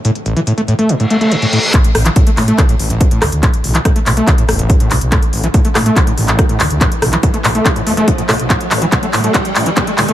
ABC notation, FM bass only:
X:1
M:4/4
L:1/16
Q:1/4=142
K:C
V:1 name="FM bass" clef=bass
z16 | z2 A,,, z3 A,, z3 A,,, z3 D,, D,, | z2 B,,, z3 B,,, z3 E,,, z3 B,,, B,,, | z2 A,,, z3 A,, z3 A,,, z3 D,, D,, |
z2 B,,, z3 B,,, z3 E,,, z3 B,,, B,,, | z2 A,,, z3 A,, z3 A,,, z3 D,, D,, |]